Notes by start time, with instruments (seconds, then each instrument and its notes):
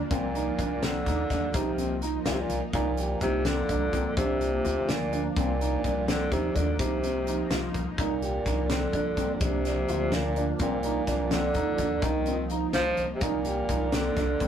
0.11 upright bass C2, tenor saxophone A#2, analog synth pad F3 A#3 D4, grand piano C4, kick, closed hi-hat
0.35 grand piano D#4, closed hi-hat
0.59 upright bass C2, grand piano D4, kick, closed hi-hat
0.83 tenor saxophone D3, grand piano C4, snare, closed hi-hat
1.06 upright bass D#2, grand piano D#4, kick, snare, closed hi-hat
1.30 upright bass D#2, grand piano D4, kick, snare, closed hi-hat
1.54 upright bass C2, tenor saxophone C3, analog synth pad F3 A#3 D#4, grand piano D#4, kick, closed hi-hat
1.78 grand piano C4, closed hi-hat
2.02 grand piano D#4, closed hi-hat
2.26 upright bass C2, tenor saxophone A#2, grand piano F4, snare, closed hi-hat
2.32 tenor saxophone C3
2.40 tenor saxophone A#2
2.50 upright bass C2, closed hi-hat
2.73 upright bass C2, tenor saxophone A#2, analog synth pad F3 A#3 D4, grand piano D#4, kick, closed hi-hat
2.97 grand piano G4, closed hi-hat
3.21 upright bass C2, tenor saxophone C3, grand piano D#4, kick, closed hi-hat
3.45 tenor saxophone D3, grand piano C4, snare, closed hi-hat
3.69 upright bass C2, grand piano D4, kick, closed hi-hat
3.93 upright bass C2, grand piano C4, kick, closed hi-hat
4.17 upright bass C2, tenor saxophone C3, analog synth pad F3 A#3 D4, grand piano D4, kick, closed hi-hat
4.41 closed hi-hat
4.65 upright bass D2, grand piano F4, closed hi-hat
4.89 tenor saxophone A#2, snare, closed hi-hat
5.13 grand piano D4, closed hi-hat
5.36 upright bass C2, tenor saxophone A#2, analog synth pad F3 A#3 D4, grand piano C4, kick, closed hi-hat
5.61 grand piano D#4, closed hi-hat
5.84 upright bass C2, grand piano D4, kick, closed hi-hat
6.08 tenor saxophone D3, grand piano C4, snare, closed hi-hat
6.32 upright bass D#2, tenor saxophone C3, grand piano D#4, kick, closed hi-hat
6.55 upright bass D#2, tenor saxophone D3, grand piano D4, kick, closed hi-hat
6.79 upright bass C2, tenor saxophone C3, analog synth pad F3 A#3 D#4, grand piano D#4, kick, closed hi-hat
7.03 grand piano C4, closed hi-hat
7.27 grand piano D#4, closed hi-hat
7.50 upright bass C2, grand piano F4, snare, closed hi-hat
7.74 upright bass C2, kick, closed hi-hat
7.98 upright bass C2, tenor saxophone A#2, analog synth pad F3 A#3 D4, grand piano D#4, kick, closed hi-hat
8.22 grand piano G4, closed hi-hat
8.46 upright bass C2, grand piano D#4, kick, snare, closed hi-hat
8.70 tenor saxophone D3, grand piano C4, snare, closed hi-hat
8.93 upright bass C2, grand piano D4, kick, closed hi-hat
9.17 upright bass C2, grand piano C4, kick, closed hi-hat
9.34 tenor saxophone D3
9.40 upright bass C2, tenor saxophone C3, analog synth pad F3 A#3 D4, grand piano D4, kick, closed hi-hat
9.65 snare, closed hi-hat
9.88 upright bass D2, grand piano F4, closed hi-hat
10.12 tenor saxophone A#2, snare, closed hi-hat
10.36 grand piano D4, closed hi-hat
10.59 upright bass C2, tenor saxophone A#2, analog synth pad F3 A#3 D4, grand piano C4, kick, closed hi-hat
10.83 grand piano D#4, closed hi-hat
11.07 upright bass C2, grand piano D4, kick, snare, closed hi-hat
11.31 tenor saxophone D3, grand piano C4, snare, closed hi-hat
11.54 upright bass D#2, grand piano D#4, kick, closed hi-hat
11.78 upright bass D#2, grand piano D4, kick, closed hi-hat
12.02 upright bass C2, tenor saxophone D#3, analog synth pad F3 A#3 D#4, grand piano D#4, kick, closed hi-hat
12.26 grand piano C4, closed hi-hat
12.50 grand piano D#4, closed hi-hat
12.73 upright bass C2, tenor saxophone F3, grand piano F4, snare, closed hi-hat
12.97 upright bass C2, closed hi-hat
13.15 tenor saxophone C3
13.21 upright bass C2, tenor saxophone A#2, analog synth pad F3 A#3 D4, grand piano D#4, kick, closed hi-hat
13.45 grand piano G4, closed hi-hat
13.69 upright bass C2, grand piano D#4, kick, closed hi-hat
13.92 tenor saxophone D3, grand piano C4, snare, closed hi-hat
14.16 upright bass C2, grand piano D4, kick, snare, closed hi-hat
14.40 upright bass C2, grand piano C4, kick, closed hi-hat